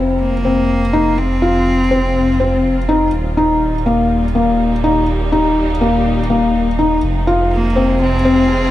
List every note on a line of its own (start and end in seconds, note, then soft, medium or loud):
0.00 3.10 F1 medium
0.00 3.13 C3 medium
0.00 3.13 G#3 medium
0.00 0.33 C4 medium
0.00 4.69 F4 medium
0.00 0.72 A#4 medium
0.20 1.19 A#3 medium
0.45 0.82 C4 medium
0.61 3.13 G#4 medium
0.93 1.12 D#4 medium
1.18 2.88 C4 medium
1.42 1.79 F4 medium
1.91 2.28 C4 medium
2.40 2.77 C4 medium
2.89 3.07 D#4 medium
3.13 7.01 D#1 medium
3.13 7.03 A#2 medium
3.37 3.74 D#4 medium
3.37 8.59 D#4 medium
3.49 7.03 G3 medium
3.86 4.23 A#3 medium
4.35 4.72 A#3 medium
4.72 7.03 G4 medium
4.84 5.02 D#4 medium
5.32 5.69 D#4 medium
5.81 6.18 A#3 medium
6.30 6.67 A#3 medium
6.79 6.97 D#4 medium
7.03 8.71 F1 medium
7.03 8.71 C3 medium
7.17 8.71 G#3 medium
7.27 7.64 F4 medium
7.52 7.97 A#3 medium
7.76 8.13 C4 medium
7.82 8.71 G#4 medium
7.94 8.71 F4 medium
8.01 8.71 C4 medium
8.25 8.62 C4 medium